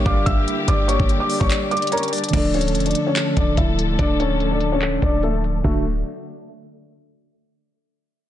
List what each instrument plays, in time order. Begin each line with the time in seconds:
Already playing: string section D3 G3 A#3 G4, tine electric piano G3 D4 G4 A#4
0.05 808-style bass G1, felt piano D5 D6, soft synth lead F5, kick
0.26 808-style bass G1, felt piano E5 E6, kick, closed hi-hat
0.47 soft synth lead E5, closed hi-hat
0.68 808-style bass G1, felt piano D5 D6, closed hi-hat
0.88 felt piano C#5 C#6, soft synth lead D5, closed hi-hat
1.00 808-style bass G1, kick
1.09 closed hi-hat
1.20 felt piano D5 D6
1.30 open hi-hat
1.40 808-style bass G1, felt piano C#5 C#6, kick
1.50 clap, closed hi-hat
1.71 felt piano D5 D6, closed hi-hat
1.77 closed hi-hat
1.82 closed hi-hat
1.87 closed hi-hat
1.92 felt piano A#4 A#5, soft synth lead C#5, closed hi-hat
1.97 closed hi-hat
2.03 closed hi-hat
2.08 closed hi-hat
2.12 soft synth lead D5, closed hi-hat, open hi-hat
2.18 closed hi-hat
2.24 closed hi-hat
2.29 tine electric piano D3 A3, closed hi-hat
2.33 808-style bass D1, string section D3 F3 A3 A4, tine electric piano F3 A4, felt piano D4 D5, kick, closed hi-hat, crash
2.54 felt piano C#4 C#5, closed hi-hat
2.61 closed hi-hat
2.68 closed hi-hat
2.75 808-style bass E1, closed hi-hat
2.80 closed hi-hat
2.86 felt piano D4 D5, closed hi-hat
2.91 closed hi-hat
2.95 closed hi-hat
3.07 felt piano C#4 C#5
3.16 clap, closed hi-hat
3.37 808-style bass D1, felt piano D4 D5, kick, closed hi-hat
3.57 808-style bass D1, felt piano E4 E5, kick, closed hi-hat
3.79 closed hi-hat
3.99 808-style bass D1, felt piano D4 D5, kick, closed hi-hat
4.20 felt piano C#4 C#5, closed hi-hat
4.40 closed hi-hat
4.51 felt piano D4 D5
4.61 closed hi-hat
4.72 felt piano C#4 C#5
4.81 clap, closed hi-hat
5.02 808-style bass D1, felt piano D4 D5, kick, closed hi-hat
5.23 felt piano A3 A4, closed hi-hat
5.44 closed hi-hat
5.64 808-style bass D1, string section D3 F#3 A3 F#4, tine electric piano D3 D4 F#4 A4, felt piano A3, kick, crash